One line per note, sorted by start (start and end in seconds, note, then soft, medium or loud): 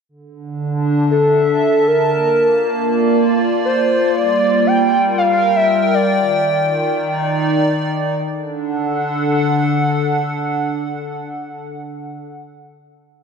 0.09 2.12 D3 medium
0.35 2.94 D4 medium
1.01 2.92 E5 medium
1.01 4.16 A5 medium
1.11 1.89 A4 loud
1.87 3.40 A#4 loud
2.12 4.97 A#3 medium
2.46 7.01 F4 medium
2.65 4.97 D5 medium
3.65 4.12 C5 medium
4.16 6.19 G3 medium
4.16 4.68 D5 loud
4.67 5.17 G5 loud
4.96 7.01 A#4 medium
5.07 8.23 G5 medium
5.18 5.57 F5 loud
5.56 5.93 E5 loud
5.94 7.42 D5 medium
6.19 8.23 D#3 medium
6.70 8.23 D#4 medium
6.75 8.23 D5 medium
8.23 12.18 D3 medium
8.30 12.25 D4 medium
8.38 12.33 A4 medium
8.46 12.41 F#5 medium